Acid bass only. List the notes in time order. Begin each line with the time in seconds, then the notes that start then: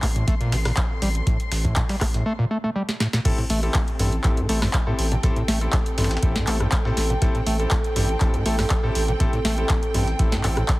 0.03 A3
0.16 A2
0.28 A3
0.41 A#2
0.52 C3
0.65 A#2
1.02 G3
1.27 A2
1.65 A2
1.76 A2
1.89 G3
2.01 A3
2.14 A2
2.26 A3
2.39 A#2
2.51 A3
2.64 A3
2.76 G3
3.01 A2
3.13 A#2
3.25 A2
3.38 A2
3.50 A3
4.00 G2
4.24 A1
4.37 A2
4.49 A3
4.62 G2
4.87 A2
5.12 A#2
5.24 A2
5.37 A2
5.48 A3
5.98 G2
6.23 A1
6.36 A2
6.48 A3
6.61 G2
6.85 A2
7.10 A#2
7.22 A2
7.35 A2
7.47 A3
7.96 G2
8.21 A1
8.34 A2
8.46 A3
8.59 G2
8.83 A2
9.08 A#2
9.20 A2
9.33 A2
9.45 A3
9.95 G2
10.19 A1
10.32 A2
10.44 G2
10.57 A2